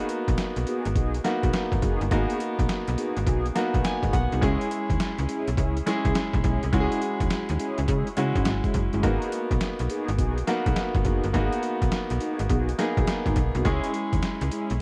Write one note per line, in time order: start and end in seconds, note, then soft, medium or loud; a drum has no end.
0.00 0.91 A#3 medium
0.00 0.91 B3 medium
0.00 0.92 D#4 medium
0.00 0.92 F#4 medium
0.09 closed hi-hat medium
0.28 0.37 B1 medium
0.28 kick medium
0.28 closed hi-hat medium
0.38 snare loud
0.38 closed hi-hat medium
0.56 0.65 B1 medium
0.56 closed hi-hat medium
0.67 0.87 B3 medium
0.67 0.87 D#4 medium
0.67 0.87 F#4 medium
0.67 0.87 G#4 medium
0.67 closed hi-hat medium
0.85 0.97 G#1 medium
0.85 closed hi-hat medium
0.96 1.20 B1 loud
0.96 1.16 B3 medium
0.96 1.16 D#4 medium
0.96 1.16 F#4 medium
0.96 1.16 G#4 medium
0.96 kick medium
0.96 closed hi-hat medium
1.14 closed hi-hat medium
1.24 2.08 A#3 medium
1.24 2.08 B3 medium
1.24 2.08 D#4 medium
1.24 2.08 F#4 medium
1.24 snare medium
1.24 closed hi-hat medium
1.43 1.52 B1 medium
1.43 1.56 B3 medium
1.43 1.56 D#4 medium
1.43 1.56 F#4 medium
1.43 1.56 G#4 medium
1.43 kick medium
1.43 closed hi-hat soft
1.53 snare loud
1.53 closed hi-hat medium
1.72 1.81 G#1 medium
1.72 kick medium
1.72 closed hi-hat soft
1.82 1.98 F#1 medium
1.82 2.02 B3 medium
1.82 2.02 D#4 medium
1.82 2.02 F#4 medium
1.82 2.03 G#4 medium
1.82 kick loud
1.82 closed hi-hat medium
2.01 2.10 G1 medium
2.01 closed hi-hat soft
2.11 2.27 G#1 loud
2.11 3.22 A#3 medium
2.11 2.38 B3 medium
2.11 3.22 B3 medium
2.11 2.38 D#4 medium
2.11 3.23 D#4 medium
2.11 2.39 F#4 medium
2.11 3.23 F#4 medium
2.11 2.39 G#4 loud
2.11 kick loud
2.11 closed hi-hat medium
2.30 closed hi-hat medium
2.40 closed hi-hat medium
2.59 2.68 B1 medium
2.59 kick medium
2.59 closed hi-hat medium
2.69 snare loud
2.69 closed hi-hat medium
2.88 2.96 B1 loud
2.88 closed hi-hat medium
2.98 3.18 B3 medium
2.98 3.18 D#4 medium
2.98 3.18 F#4 medium
2.98 3.18 G#4 medium
2.98 closed hi-hat medium
3.17 3.25 G#1 medium
3.17 closed hi-hat medium
3.26 3.51 B1 medium
3.26 3.47 B3 medium
3.26 3.47 D#4 medium
3.26 3.47 F#4 medium
3.26 3.47 G#4 medium
3.26 kick medium
3.26 closed hi-hat medium
3.46 closed hi-hat soft
3.55 4.39 A#3 medium
3.55 4.39 B3 medium
3.55 4.39 D#4 medium
3.55 4.39 F#4 medium
3.55 snare medium
3.55 closed hi-hat medium
3.74 3.83 B1 medium
3.74 3.87 B3 medium
3.74 3.87 D#4 medium
3.74 3.87 F#4 medium
3.74 3.87 G#4 medium
3.74 kick medium
3.74 closed hi-hat soft
3.84 4.11 G#5 medium
3.84 snare loud
3.84 closed hi-hat medium
4.03 4.12 G#1 medium
4.03 4.15 B3 medium
4.03 4.16 D#4 medium
4.03 4.16 F#4 medium
4.03 4.16 G#4 medium
4.03 kick medium
4.03 closed hi-hat soft
4.13 4.29 B1 loud
4.13 4.40 F#5 medium
4.13 kick loud
4.13 closed hi-hat medium
4.32 4.41 C2 medium
4.32 4.44 B3 medium
4.32 4.44 D#4 medium
4.32 4.45 F#4 medium
4.32 4.41 G#4 medium
4.32 closed hi-hat soft
4.41 4.58 C#2 loud
4.41 5.53 G#3 medium
4.41 4.69 G#3 medium
4.41 5.53 C#4 medium
4.41 4.69 C#4 medium
4.41 4.69 E4 medium
4.41 5.53 E4 medium
4.41 4.69 G#4 medium
4.41 5.54 G#4 medium
4.41 kick loud
4.41 closed hi-hat medium
4.61 closed hi-hat medium
4.71 closed hi-hat medium
4.90 4.98 D#2 medium
4.90 kick medium
4.90 closed hi-hat medium
5.00 snare loud
5.00 closed hi-hat medium
5.18 5.27 C#2 medium
5.18 closed hi-hat soft
5.28 5.48 G#3 medium
5.28 5.48 C#4 medium
5.28 5.49 E4 medium
5.28 5.49 G#4 medium
5.28 closed hi-hat medium
5.48 5.56 B1 medium
5.48 closed hi-hat medium
5.57 5.82 C#2 medium
5.57 5.77 G#3 medium
5.57 5.77 C#4 medium
5.57 5.77 E4 medium
5.57 5.78 G#4 medium
5.57 kick medium
5.57 closed hi-hat medium
5.77 closed hi-hat medium
5.86 6.70 G#3 medium
5.86 6.70 C#4 medium
5.86 6.70 E4 medium
5.86 6.70 G#4 medium
5.86 snare medium
5.86 closed hi-hat medium
6.05 6.14 C#2 medium
6.05 6.17 G#3 medium
6.05 6.18 C#4 medium
6.05 6.18 E4 medium
6.05 6.18 G#4 medium
6.05 kick medium
6.05 closed hi-hat soft
6.15 snare loud
6.15 closed hi-hat medium
6.34 6.42 B1 loud
6.34 kick medium
6.34 closed hi-hat soft
6.44 6.60 B1 loud
6.44 6.64 G#3 medium
6.44 6.64 C#4 medium
6.44 6.64 E4 medium
6.44 6.64 G#4 medium
6.44 kick medium
6.44 closed hi-hat medium
6.63 6.72 C2 medium
6.63 closed hi-hat soft
6.72 6.89 C#2 loud
6.72 7.84 G#3 medium
6.72 7.00 G#3 medium
6.72 7.00 C#4 medium
6.72 7.84 C#4 medium
6.72 7.00 E4 medium
6.72 7.84 E4 medium
6.72 6.82 F#4 medium
6.72 7.00 G#4 medium
6.72 kick loud
6.72 closed hi-hat medium
6.80 7.88 G#4 medium
6.92 closed hi-hat medium
7.02 closed hi-hat medium
7.20 7.29 D#2 medium
7.20 kick medium
7.20 closed hi-hat medium
7.30 snare loud
7.30 closed hi-hat medium
7.49 7.58 D#2 medium
7.49 closed hi-hat medium
7.59 7.79 G#3 medium
7.59 7.79 C#4 medium
7.59 7.79 E4 medium
7.59 7.80 G#4 medium
7.59 closed hi-hat medium
7.78 7.87 C#2 medium
7.78 closed hi-hat medium
7.88 8.04 C#3 loud
7.88 8.08 G#3 medium
7.88 8.08 C#4 medium
7.88 8.08 E4 medium
7.88 8.08 G#4 medium
7.88 kick medium
7.88 closed hi-hat medium
8.07 closed hi-hat medium
8.17 8.33 C#3 medium
8.17 9.00 G#3 medium
8.17 9.00 C#4 medium
8.17 9.01 E4 medium
8.17 9.01 F#4 medium
8.17 closed hi-hat medium
8.35 8.44 G#2 medium
8.35 8.48 G#3 medium
8.35 8.48 C#4 medium
8.35 8.48 E4 medium
8.35 8.48 G#4 medium
8.35 kick medium
8.35 closed hi-hat soft
8.45 8.62 G#1 loud
8.45 snare loud
8.45 closed hi-hat medium
8.64 8.77 G#3 medium
8.64 8.77 C#4 medium
8.64 8.77 E4 medium
8.64 8.77 G#4 medium
8.64 kick medium
8.64 closed hi-hat soft
8.74 8.90 F#1 loud
8.74 kick medium
8.74 closed hi-hat medium
8.93 9.02 G1 medium
8.93 9.06 G#3 medium
8.93 9.06 C#4 medium
8.93 9.06 E4 medium
8.93 9.02 G#4 medium
8.93 closed hi-hat soft
9.03 9.19 G#1 loud
9.03 10.14 A#3 medium
9.03 9.30 B3 medium
9.03 10.15 B3 medium
9.03 9.30 D#4 medium
9.03 10.15 D#4 medium
9.03 9.31 F#4 medium
9.03 10.15 F#4 medium
9.03 9.31 G#4 loud
9.03 kick loud
9.03 closed hi-hat medium
9.22 closed hi-hat medium
9.32 closed hi-hat medium
9.51 9.60 B1 medium
9.51 kick medium
9.51 closed hi-hat medium
9.61 snare loud
9.61 closed hi-hat medium
9.79 9.89 B1 medium
9.79 closed hi-hat soft
9.89 10.10 B3 medium
9.89 10.10 D#4 medium
9.89 10.10 F#4 medium
9.89 10.10 G#4 medium
9.89 closed hi-hat medium
10.08 10.20 G#1 medium
10.08 closed hi-hat medium
10.18 10.43 B1 loud
10.18 10.39 B3 medium
10.18 10.39 D#4 medium
10.18 10.39 F#4 medium
10.18 10.39 G#4 medium
10.18 kick medium
10.18 closed hi-hat medium
10.38 closed hi-hat medium
10.47 11.31 A#3 medium
10.47 11.31 B3 medium
10.47 11.31 D#4 medium
10.47 11.31 F#4 medium
10.47 snare medium
10.47 closed hi-hat medium
10.66 10.75 B1 medium
10.66 10.79 B3 medium
10.66 10.79 D#4 medium
10.66 10.79 F#4 medium
10.66 10.79 G#4 medium
10.66 kick medium
10.66 closed hi-hat medium
10.76 snare loud
10.76 closed hi-hat medium
10.95 11.04 G#1 loud
10.95 kick medium
10.95 closed hi-hat soft
11.05 11.21 F#1 medium
11.05 11.25 B3 medium
11.05 11.25 D#4 medium
11.05 11.25 F#4 medium
11.05 11.25 G#4 medium
11.05 kick loud
11.05 closed hi-hat medium
11.24 11.33 G1 medium
11.24 closed hi-hat soft
11.33 11.50 G#1 loud
11.33 12.45 A#3 medium
11.33 11.61 B3 medium
11.33 12.45 B3 medium
11.33 11.61 D#4 medium
11.33 12.45 D#4 medium
11.33 11.61 F#4 medium
11.33 12.46 F#4 medium
11.33 11.61 G#4 medium
11.33 kick loud
11.33 closed hi-hat medium
11.52 closed hi-hat medium
11.63 closed hi-hat medium
11.82 11.90 B1 medium
11.82 kick medium
11.82 closed hi-hat medium
11.92 snare loud
11.92 closed hi-hat medium
12.10 12.19 B1 medium
12.10 closed hi-hat medium
12.20 12.41 B3 medium
12.20 12.41 D#4 medium
12.20 12.41 F#4 medium
12.20 12.41 G#4 medium
12.20 closed hi-hat medium
12.39 12.48 G#1 medium
12.39 closed hi-hat medium
12.49 12.74 B1 loud
12.49 12.69 B3 medium
12.49 12.69 D#4 medium
12.49 12.70 F#4 medium
12.49 12.70 G#4 medium
12.49 kick medium
12.49 closed hi-hat medium
12.69 closed hi-hat medium
12.78 13.62 A#3 medium
12.78 13.62 B3 medium
12.78 13.62 D#4 medium
12.78 13.62 G#4 medium
12.78 snare medium
12.78 closed hi-hat medium
12.97 13.06 B1 medium
12.97 13.10 B3 medium
12.97 13.10 D#4 medium
12.97 13.10 F#4 medium
12.97 13.10 G#4 medium
12.97 kick medium
12.97 closed hi-hat soft
13.07 snare loud
13.07 closed hi-hat medium
13.26 13.35 G#1 loud
13.26 13.38 B3 medium
13.26 13.39 D#4 medium
13.26 13.39 F#4 medium
13.26 13.39 G#4 medium
13.26 kick loud
13.26 closed hi-hat soft
13.36 13.52 B1 medium
13.36 kick loud
13.36 closed hi-hat medium
13.55 13.63 C2 loud
13.55 13.67 B3 medium
13.55 13.67 D#4 medium
13.55 13.68 F#4 medium
13.55 13.64 G#4 medium
13.55 closed hi-hat soft
13.64 13.81 C#2 medium
13.64 13.92 G#3 medium
13.64 14.76 G#3 medium
13.64 13.92 C#4 medium
13.64 14.76 C#4 medium
13.64 13.92 E4 medium
13.64 14.77 E4 medium
13.64 13.92 G#4 loud
13.64 14.77 G#4 medium
13.64 kick loud
13.64 closed hi-hat medium
13.84 closed hi-hat medium
13.94 closed hi-hat medium
14.13 14.21 D#2 medium
14.13 kick medium
14.13 closed hi-hat medium
14.22 snare loud
14.22 closed hi-hat medium
14.41 14.50 C#2 medium
14.41 closed hi-hat medium
14.51 14.71 G#3 medium
14.51 14.72 C#4 medium
14.51 14.72 E4 medium
14.51 14.72 G#4 medium
14.51 closed hi-hat medium
14.70 14.79 B1 medium
14.70 closed hi-hat medium